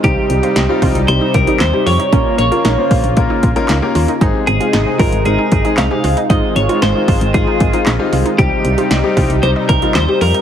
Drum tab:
HH |x-xxx-oxx-xxx-ox|x-xxx-oxx-xxx-ox|x-xxx-oxx-xxx-ox|x-xxx-oxx-xxx-ox|
CP |------------x---|------------x---|------------x---|------------x---|
SD |----o-------o---|----o-------o---|----o-------o---|----o-------o---|
BD |o-----o---o-----|o-----o-o-o-----|o-----o---o-----|o-----o-o-o-----|

HH |x-xxx-oxx-xxx-ox|
CP |------------x---|
SD |----o-------o---|
BD |o-----o---o-----|